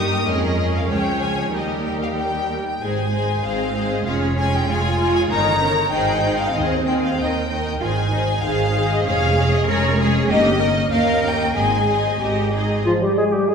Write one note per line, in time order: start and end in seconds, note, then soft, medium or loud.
0.00 0.27 G2 soft
0.00 0.25 A#3 soft
0.00 0.28 D#4 soft
0.00 0.28 G4 soft
0.00 0.90 A#4 soft
0.00 0.28 D#6 medium
0.27 0.89 F2 soft
0.27 0.89 G#3 soft
0.27 1.54 C#4 soft
0.27 0.89 G#4 soft
0.27 0.75 D#5 medium
0.77 0.91 F5 soft
0.90 1.54 C#2 soft
0.90 1.54 F3 soft
0.90 1.52 G#4 soft
0.90 1.54 C#5 soft
0.90 1.22 G5 soft
1.23 1.54 G#5 soft
1.53 2.59 D#2 soft
1.53 2.59 G3 soft
1.53 2.59 D#4 soft
1.53 2.61 G4 soft
1.53 2.59 A#4 soft
1.53 1.85 D#5 soft
1.87 1.93 G5 soft
2.03 2.09 F5 soft
2.18 2.65 G5 soft
2.67 2.82 G5 soft
2.81 3.37 G#1 soft
2.81 3.12 G#3 soft
2.81 3.12 D#4 soft
2.81 3.11 G#4 soft
2.81 3.12 C5 soft
2.81 3.45 G#5 soft
3.13 3.43 G#3 soft
3.13 3.43 D#4 soft
3.13 3.43 G#4 soft
3.13 3.43 C5 soft
3.44 3.99 G#1 soft
3.44 3.75 G#3 soft
3.44 4.02 C4 soft
3.44 3.75 D#4 soft
3.44 3.74 G#4 soft
3.44 3.74 C5 soft
3.44 3.91 F5 soft
3.75 4.05 G#3 soft
3.75 4.06 D#4 soft
3.75 4.06 G#4 soft
3.75 4.06 C5 soft
3.92 4.07 D#5 soft
4.06 4.62 F1 soft
4.06 4.36 G#3 soft
4.06 4.67 C#4 soft
4.06 4.36 F4 soft
4.06 4.37 G#4 soft
4.06 4.36 C#5 soft
4.06 4.14 F5 soft
4.37 4.67 G#3 soft
4.37 4.67 F4 soft
4.37 4.68 G#4 soft
4.37 4.68 C#5 soft
4.37 4.53 G#5 soft
4.54 4.69 G5 soft
4.68 5.23 F1 soft
4.68 4.98 G#3 soft
4.68 4.99 F4 soft
4.68 5.30 F4 soft
4.68 5.00 G#4 soft
4.68 4.99 C#5 soft
4.68 5.14 G#5 medium
5.00 5.30 G#3 soft
5.00 5.30 F4 soft
5.00 5.30 G#4 soft
5.00 5.30 C#5 soft
5.16 5.22 G#5 medium
5.30 5.85 G1 soft
5.30 5.60 D#3 soft
5.30 5.60 D#4 soft
5.30 5.61 A#4 soft
5.30 5.61 C#5 soft
5.30 5.91 A#5 medium
5.61 5.91 D#3 soft
5.61 5.69 C#4 soft
5.61 5.91 D#4 soft
5.61 5.92 A#4 soft
5.61 5.92 C#5 soft
5.91 6.47 G#1 soft
5.91 6.21 D#3 soft
5.91 6.53 D#4 soft
5.91 6.21 D#4 soft
5.91 6.22 G#4 soft
5.91 6.22 C5 soft
5.91 6.38 G5 medium
6.22 6.53 D#3 soft
6.22 6.53 D#4 soft
6.22 6.53 G#4 soft
6.22 6.53 C5 soft
6.40 6.55 F5 soft
6.54 7.11 D#2 soft
6.54 6.85 D#3 soft
6.54 7.49 C4 soft
6.54 6.85 D#4 soft
6.54 6.85 G#4 soft
6.54 6.86 C5 soft
6.54 6.86 D#5 soft
6.86 7.17 D#3 soft
6.86 7.17 D#4 soft
6.86 7.17 G#4 soft
6.86 7.18 C5 soft
6.86 6.92 G5 soft
7.03 7.18 F5 soft
7.18 7.74 D#2 soft
7.18 7.48 D#3 soft
7.18 7.48 D#4 soft
7.18 7.49 A#4 soft
7.18 7.49 D#5 soft
7.18 7.65 G5 soft
7.50 7.80 D#3 soft
7.50 7.80 D#4 soft
7.50 7.80 A#4 soft
7.50 7.81 D#5 soft
7.67 7.73 G5 soft
7.80 8.36 G#1 soft
7.80 8.11 D#3 soft
7.80 8.11 D#4 soft
7.80 7.88 F4 soft
7.80 8.12 G#4 soft
7.80 8.12 C5 soft
7.80 8.42 G#5 medium
8.12 8.41 D#3 soft
8.12 8.20 D#4 soft
8.12 8.41 D#4 soft
8.12 8.43 G#4 soft
8.12 8.43 C5 soft
8.43 8.98 G#1 soft
8.43 8.72 D#3 soft
8.43 8.72 D#4 soft
8.43 9.03 G#4 soft
8.43 8.74 G#4 soft
8.43 8.74 C5 soft
8.43 8.90 F5 medium
8.74 9.04 D#3 soft
8.74 9.04 D#4 soft
8.74 9.04 G#4 soft
8.74 9.05 C5 soft
8.91 9.06 D#5 soft
9.04 9.60 F1 medium
9.04 9.35 G#3 soft
9.04 9.35 C#4 soft
9.04 9.66 G#4 soft
9.04 9.36 G#4 soft
9.04 9.36 C#5 soft
9.04 9.51 F5 medium
9.36 9.66 G#3 soft
9.36 9.66 C#4 soft
9.36 9.67 G#4 soft
9.36 9.67 C#5 soft
9.53 9.68 D#5 medium
9.67 10.21 F1 medium
9.67 9.96 G#3 soft
9.67 9.96 C#4 soft
9.67 9.98 G#4 soft
9.67 9.98 A#4 soft
9.67 9.98 C#5 medium
9.67 9.98 C#5 soft
9.97 10.28 G#3 soft
9.97 10.28 C#4 soft
9.97 10.29 G#4 medium
9.97 10.29 G#4 soft
9.97 10.29 C#5 soft
10.28 10.84 G1 medium
10.28 10.58 A#3 soft
10.28 10.59 C#4 soft
10.28 10.59 D#4 soft
10.28 10.60 G4 medium
10.28 10.88 D#5 medium
10.28 10.58 D#5 soft
10.59 10.90 A#3 soft
10.59 10.90 C#4 soft
10.59 10.90 D#4 soft
10.59 10.67 A#4 soft
10.59 10.91 D#5 soft
10.90 11.48 D#2 soft
10.90 11.22 A#3 soft
10.90 11.22 C#4 soft
10.90 11.22 D#4 soft
10.90 11.54 A#4 soft
10.90 11.22 D#5 soft
10.90 11.23 F5 medium
11.23 11.55 A#3 soft
11.23 11.55 C#4 soft
11.23 11.54 D#4 soft
11.23 11.53 D#5 soft
11.23 11.56 G5 soft
11.55 12.14 G#1 soft
11.55 11.88 G#3 soft
11.55 11.88 C4 soft
11.55 11.87 D#4 soft
11.55 12.14 G#4 soft
11.55 11.87 D#5 soft
11.55 12.20 G#5 soft
11.88 12.20 G#3 soft
11.88 12.20 C4 soft
11.88 12.20 D#4 soft
11.88 12.20 D#5 soft
12.21 12.78 G#1 soft
12.21 12.52 G#3 soft
12.21 12.52 C4 soft
12.21 12.53 D#4 soft
12.21 12.51 G4 soft
12.21 12.52 D#5 soft
12.54 12.85 G#3 soft
12.54 12.85 C4 soft
12.54 12.85 D#4 soft
12.54 12.86 G#4 soft
12.54 12.85 D#5 soft
12.85 13.00 F3 medium
12.85 13.03 F3 soft
12.85 12.92 F4 soft
12.85 12.93 F4 medium
13.01 13.16 G3 soft
13.01 13.17 G3 soft
13.01 13.16 G4 soft
13.01 13.09 G4 soft
13.16 13.32 G#3 soft
13.16 13.24 G#3 soft
13.16 13.34 G#4 soft
13.16 13.24 G#4 medium
13.32 13.50 G3 soft
13.32 13.48 G3 soft
13.32 13.47 G4 soft
13.32 13.50 G4 soft
13.48 13.55 G#3 soft
13.48 13.55 G#4 soft
13.48 13.55 G#4 medium